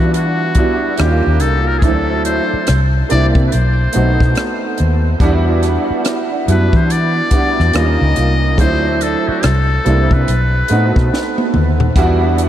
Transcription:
0.00 0.66 E3 medium
0.00 0.56 G3 medium
0.00 0.56 B3 medium
0.00 0.57 D4 medium
0.00 0.58 E4 medium
0.00 1.00 F4 soft
0.00 0.14 F#4 medium
0.00 0.59 F#4 loud
0.00 1.00 C5 soft
0.00 0.99 F#5 soft
0.14 1.00 F#4 medium
0.14 closed hi-hat medium
0.55 0.96 G3 medium
0.55 0.98 B3 medium
0.55 0.99 D4 medium
0.55 0.99 E4 medium
0.55 kick medium
0.55 closed hi-hat medium
0.59 0.99 F#4 medium
0.97 1.20 D#2 medium
0.97 1.71 G3 medium
0.97 1.71 A#3 medium
0.97 1.71 C#4 medium
0.97 1.72 D#4 medium
0.97 1.72 F4 medium
0.97 1.42 G4 medium
0.97 cross-stick medium
0.97 closed hi-hat medium
1.27 1.42 D#2 medium
1.40 1.83 C2 medium
1.40 1.69 A4 medium
1.40 closed hi-hat medium
1.67 1.80 A#4 medium
1.79 1.90 E3 medium
1.79 1.85 G#4 medium
1.79 kick medium
1.79 closed hi-hat medium
1.83 2.38 D2 medium
1.83 2.55 A3 medium
1.83 2.56 C4 medium
1.83 2.56 D4 medium
1.83 2.56 E4 medium
1.83 2.25 A4 medium
1.88 2.58 F#3 medium
2.25 2.82 C5 medium
2.25 closed hi-hat medium
2.53 muted fingered electric bass stroke soft
2.67 3.02 C2 medium
2.67 cross-stick medium
2.67 closed hi-hat medium
3.09 3.32 C2 medium
3.09 3.51 G3 medium
3.09 3.51 A#3 medium
3.09 3.52 C4 medium
3.09 3.52 D4 medium
3.09 3.52 E4 medium
3.09 3.26 D5 medium
3.09 closed hi-hat medium
3.35 3.48 C3 medium
3.35 kick medium
3.47 3.54 B4 medium
3.52 3.87 B1 medium
3.52 4.78 C5 medium
3.52 closed hi-hat medium
3.93 4.16 B1 medium
3.93 5.01 A3 medium
3.93 5.02 B3 medium
3.93 5.02 C4 medium
3.93 5.02 D#4 medium
3.93 5.03 F#4 medium
3.93 closed hi-hat medium
4.20 4.33 B2 medium
4.20 kick medium
4.20 cross-stick soft
4.35 cross-stick loud
4.35 closed hi-hat medium
4.78 5.13 D#2 medium
4.78 closed hi-hat medium
5.20 5.76 E2 medium
5.20 6.28 G3 loud
5.20 6.28 B3 medium
5.20 6.29 D4 medium
5.20 6.29 E4 medium
5.20 6.30 F#4 loud
5.20 kick medium
5.20 closed hi-hat medium
5.63 cross-stick soft
5.63 closed hi-hat medium
5.90 muted fingered electric bass stroke soft
6.05 cross-stick medium
6.05 closed hi-hat medium
6.46 6.69 F#2 medium
6.46 7.19 G3 medium
6.46 7.20 B3 medium
6.46 7.20 D4 medium
6.46 7.20 E4 medium
6.46 7.21 F#4 medium
6.46 6.78 B4 medium
6.46 closed hi-hat medium
6.73 7.21 E3 medium
6.73 6.93 C5 medium
6.73 kick medium
6.90 7.77 D5 medium
6.90 closed hi-hat medium
7.31 7.71 G3 medium
7.31 7.73 B3 medium
7.31 7.74 D4 medium
7.31 7.74 E4 medium
7.31 7.75 F#4 medium
7.31 muted fingered electric bass stroke soft
7.31 kick medium
7.31 closed hi-hat medium
7.60 7.72 E2 medium
7.60 cross-stick soft
7.72 7.96 D#2 medium
7.72 8.46 G3 medium
7.72 8.46 A#3 medium
7.72 8.47 C#4 medium
7.72 8.47 D#4 medium
7.72 8.47 F4 medium
7.72 8.59 D#5 medium
7.72 cross-stick loud
7.72 closed hi-hat medium
8.01 8.13 C#2 medium
8.16 8.59 C2 medium
8.16 closed hi-hat medium
8.57 9.14 D2 medium
8.57 9.30 F#3 medium
8.57 9.31 A3 medium
8.57 9.31 C4 medium
8.57 9.32 D4 medium
8.57 9.32 E4 medium
8.57 9.04 C5 medium
8.57 kick medium
8.57 closed hi-hat medium
9.01 9.30 A4 medium
9.01 closed hi-hat medium
9.28 9.46 F#4 medium
9.28 muted fingered electric bass stroke soft
9.43 9.78 C2 medium
9.43 10.14 A4 medium
9.43 cross-stick medium
9.43 closed hi-hat medium
9.84 10.07 C2 medium
9.84 10.27 G3 medium
9.84 10.27 A#3 medium
9.84 10.27 C4 medium
9.84 10.28 D4 medium
9.84 10.28 E4 medium
9.84 closed hi-hat medium
10.11 10.24 C3 medium
10.11 11.55 B4 medium
10.11 kick medium
10.28 10.62 B1 medium
10.28 closed hi-hat medium
10.68 10.92 A2 medium
10.68 11.77 A3 medium
10.68 11.78 B3 medium
10.68 11.78 C4 medium
10.68 11.79 D#4 medium
10.68 closed hi-hat medium
10.72 11.79 F#4 medium
10.96 11.09 B2 medium
10.96 kick medium
10.96 cross-stick soft
11.14 snare soft
11.38 high tom medium
11.54 11.89 D#2 medium
11.54 mid tom medium
11.80 floor tom medium
11.96 12.49 E2 medium
11.96 12.49 G3 loud
11.96 12.49 B3 loud
11.96 12.49 D4 medium
11.96 12.49 E4 medium
11.96 12.49 F#4 loud
11.96 kick medium
11.96 closed hi-hat medium
12.38 closed hi-hat medium

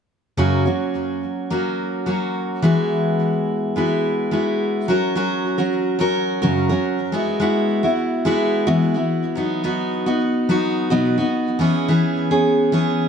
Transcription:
0.37 0.66 F#2 medium
0.37 0.66 C#3 medium
0.37 0.66 F#3 medium
0.37 0.66 A#3 medium
0.37 0.65 C#4 medium
0.37 0.64 F#4 medium
0.65 1.50 F#3 soft
0.65 1.50 A#3 soft
0.65 1.51 C#4 soft
0.65 1.52 F#4 soft
1.50 2.06 F#3 soft
1.50 2.06 A#3 medium
1.50 2.07 C#4 medium
1.50 2.08 F#4 medium
2.06 2.63 F#3 medium
2.06 2.63 A#3 soft
2.06 2.64 C#4 soft
2.06 2.65 F#4 medium
2.62 3.76 E3 medium
2.62 3.75 G#3 medium
2.62 3.75 B3 medium
2.62 3.77 E4 medium
2.62 3.77 F#4 medium
3.76 4.30 G#3 soft
3.76 4.31 B3 medium
3.76 4.32 E4 medium
3.76 4.33 F#4 medium
4.31 4.88 G#3 soft
4.31 4.89 B3 soft
4.31 4.89 E4 medium
4.31 4.90 F#4 medium
4.88 5.14 F#3 medium
4.88 5.15 C#4 medium
4.88 5.16 F#4 medium
4.88 5.16 A#4 medium
5.15 5.58 F#3 medium
5.15 5.58 C#4 medium
5.15 5.57 F#4 medium
5.15 5.57 A#4 medium
5.58 5.97 F#3 soft
5.58 5.99 C#4 soft
5.58 5.99 F#4 soft
5.58 6.00 A#4 soft
5.99 6.42 F#3 medium
5.99 6.42 C#4 medium
5.99 6.41 F#4 medium
5.99 6.41 A#4 medium
6.42 6.71 F#2 soft
6.42 6.71 C#3 medium
6.42 6.71 F#3 medium
6.42 6.70 C#4 medium
6.42 6.69 F#4 medium
6.42 6.68 A#4 medium
6.69 7.12 F#3 soft
6.69 7.13 C#4 soft
6.69 7.13 F#4 medium
6.69 7.12 A#4 medium
7.12 7.38 G#3 medium
7.12 7.40 B3 medium
7.12 7.41 E4 medium
7.12 7.41 F#4 medium
7.40 7.82 G#3 medium
7.40 7.83 B3 medium
7.40 7.83 E4 medium
7.40 7.82 F#4 medium
7.83 8.25 B3 soft
7.83 8.26 E4 medium
7.83 8.25 F#4 soft
8.25 8.67 G#3 medium
8.25 8.67 B3 medium
8.25 8.66 E4 medium
8.25 8.66 F#4 medium
8.67 8.96 E3 medium
8.67 8.96 G#3 medium
8.67 8.95 B3 medium
8.67 8.94 E4 medium
8.67 8.93 F#4 medium
8.94 9.36 B3 soft
8.94 9.37 E4 medium
8.94 9.37 F#4 medium
9.35 9.62 F#3 medium
9.35 9.63 B3 medium
9.35 9.64 D#4 medium
9.35 9.64 F#4 medium
9.64 10.06 F#3 medium
9.64 10.06 B3 medium
9.64 10.06 D#4 medium
9.64 10.05 F#4 medium
10.06 10.48 B3 soft
10.06 10.49 D#4 medium
10.06 10.49 F#4 medium
10.49 10.91 F#3 medium
10.49 10.90 B3 medium
10.49 10.90 D#4 medium
10.49 10.89 F#4 medium
10.90 11.19 B2 soft
10.90 11.19 F#3 medium
10.90 11.19 B3 medium
10.90 11.18 D#4 medium
10.90 11.16 F#4 medium
11.18 11.59 B3 soft
11.18 11.60 D#4 soft
11.18 11.60 F#4 soft
11.59 11.87 E3 medium
11.59 11.88 B3 medium
11.59 11.89 C#4 medium
11.59 11.89 G#4 medium
11.88 12.30 E3 medium
11.88 12.31 B3 medium
11.88 12.30 C#4 medium
11.88 12.30 G#4 medium
12.31 12.72 B3 soft
12.31 12.72 C#4 soft
12.31 12.73 G#4 medium
12.72 13.09 E3 medium
12.72 13.09 B3 medium
12.72 13.09 C#4 medium
12.72 13.09 G#4 medium

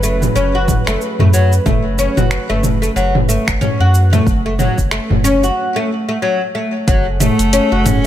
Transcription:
0.00 0.29 F#1 medium
0.00 5.54 F#3 medium
0.00 0.21 A3 medium
0.00 5.54 C#4 medium
0.00 5.54 G#4 medium
0.00 5.57 B4 loud
0.00 cabasa medium
0.22 mid tom medium
0.22 cabasa soft
0.36 0.78 F#1 medium
0.36 0.54 C#4 loud
0.36 cabasa soft
0.55 0.85 F#4 medium
0.68 kick loud
0.68 mid tom medium
0.68 cabasa medium
0.87 0.97 F#1 loud
0.87 1.00 A3 loud
0.87 finger snap medium
0.87 cabasa soft
1.01 cabasa soft
1.19 1.59 F#2 medium
1.19 1.28 A3 medium
1.19 mid tom medium
1.19 udu medium
1.33 1.51 F#3 medium
1.33 cabasa medium
1.53 cabasa soft
1.66 2.08 F#1 loud
1.66 1.84 A3 medium
1.66 kick loud
1.66 mid tom medium
1.66 cabasa soft
1.99 2.17 C#4 loud
1.99 cabasa medium
2.17 2.38 F#1 loud
2.17 2.48 F#4 medium
2.17 mid tom medium
2.17 cabasa soft
2.31 finger snap medium
2.31 cabasa soft
2.50 2.90 F#1 loud
2.50 2.63 A3 loud
2.50 udu medium
2.63 mid tom medium
2.63 cabasa medium
2.82 2.90 A3 medium
2.82 cabasa soft
2.96 3.38 F#1 loud
2.96 3.14 F#3 medium
2.96 cabasa soft
3.15 mid tom medium
3.29 3.47 A3 medium
3.29 udu medium
3.29 cabasa medium
3.48 3.57 F#1 loud
3.48 finger snap medium
3.48 kick medium
3.48 cabasa soft
3.61 3.79 C#4 loud
3.61 mid tom medium
3.61 udu medium
3.61 cabasa soft
3.80 4.20 F#2 medium
3.80 4.11 F#4 medium
3.94 cabasa medium
4.13 4.26 A3 medium
4.13 mid tom medium
4.13 cabasa soft
4.27 4.69 F#1 medium
4.27 kick loud
4.27 cabasa soft
4.46 4.54 A3 medium
4.59 4.77 F#3 medium
4.59 mid tom medium
4.59 cabasa medium
4.78 4.99 F#1 loud
4.78 kick medium
4.78 cabasa soft
4.91 5.10 A3 medium
4.91 finger snap medium
4.91 cabasa soft
5.10 5.50 F#1 loud
5.10 mid tom medium
5.10 udu loud
5.24 5.42 C#4 loud
5.24 cabasa medium
5.43 5.74 F#4 medium
5.43 cabasa soft
5.76 5.89 A3 loud
6.09 6.17 A3 medium
6.22 6.40 F#3 medium
6.55 6.73 A3 medium
6.88 7.30 F#1 loud
6.88 7.06 F#3 medium
6.88 8.06 G#4 medium
6.88 8.06 A4 medium
6.88 8.06 C#5 medium
6.88 8.06 F#5 medium
6.88 kick loud
6.88 closed hi-hat medium
6.88 cabasa soft
7.20 7.38 A3 medium
7.20 7.88 A3 medium
7.20 closed hi-hat soft
7.20 mid tom medium
7.20 cabasa medium
7.39 7.60 F#1 loud
7.39 closed hi-hat soft
7.39 cabasa soft
7.53 7.71 C#4 loud
7.53 closed hi-hat medium
7.53 cabasa soft
7.72 8.06 F#1 medium
7.72 8.03 F#4 medium
7.86 8.06 C#4 loud
7.86 closed hi-hat soft
7.86 mid tom medium
7.86 udu medium
7.86 cabasa medium

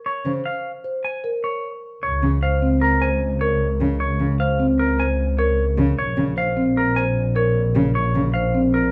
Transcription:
0.06 0.32 C#5 medium
0.25 0.40 C#3 soft
0.25 0.51 C5 soft
0.46 0.71 F5 soft
0.84 1.10 C5 soft
1.04 1.30 G#5 soft
1.24 1.50 A#4 medium
1.44 1.70 C#5 soft
2.03 5.86 C#2 medium
2.03 2.29 C#5 medium
2.23 2.38 C#3 medium
2.43 2.68 C5 medium
2.43 2.68 F5 soft
2.62 2.88 C4 medium
2.81 3.08 A#4 medium
3.02 3.27 C5 medium
3.02 3.27 G#5 medium
3.41 3.67 A#4 medium
3.41 3.67 C#5 medium
3.81 3.95 C#3 medium
4.00 4.26 C#5 medium
4.20 4.35 C#3 medium
4.40 4.66 C5 medium
4.40 4.66 F5 medium
4.60 4.85 C4 medium
4.79 5.05 A#4 medium
4.99 5.25 C5 medium
4.99 5.25 G#5 medium
5.38 5.64 A#4 medium
5.38 5.64 C#5 medium
5.78 5.93 C#3 medium
5.98 8.92 A#1 medium
5.98 6.24 C#5 medium
6.17 6.32 C#3 medium
6.37 6.63 C5 medium
6.37 6.63 F5 medium
6.57 6.83 C4 medium
6.77 7.03 A#4 medium
6.96 7.22 C5 medium
6.96 7.22 G#5 medium
7.36 7.62 A#4 medium
7.36 7.62 C#5 medium
7.75 7.90 C#3 medium
7.95 8.21 C#5 medium
8.15 8.30 C#3 medium
8.34 8.60 C5 medium
8.34 8.60 F5 soft
8.54 8.80 C4 medium
8.74 8.92 A#4 medium

